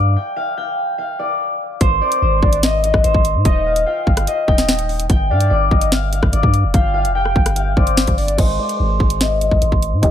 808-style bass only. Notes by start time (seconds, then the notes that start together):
Already playing: G2
1.81 G#1
2.22 G#1
2.43 G#1
2.94 G#1
3.04 G#1
3.14 G#1
3.35 G#2
3.45 D#1
4.07 G1
4.48 D#1
5.10 G1
5.30 G2
5.51 G1
5.71 G1
6.23 G1
6.33 G1
6.43 G2
6.64 F1
6.74 G1
7.05 F1
7.36 G1
7.77 G1
8.08 G1
8.38 G#1
8.80 G#1
9.00 G#1
9.51 G#1
9.62 G#1
9.72 G#1
9.93 G#2
10.03 D#1